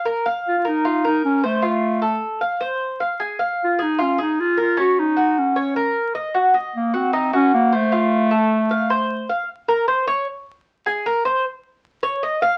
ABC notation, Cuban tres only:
X:1
M:4/4
L:1/8
Q:1/4=153
K:Fphr
V:1 name="Cuban tres"
B f2 B F B2 c | F2 =A2 f c2 f | A f2 A F A2 B | D2 G2 d B2 e |
G e2 G E G2 c | F2 =A2 f c2 f | z B c d z3 A | B c z3 d e f |]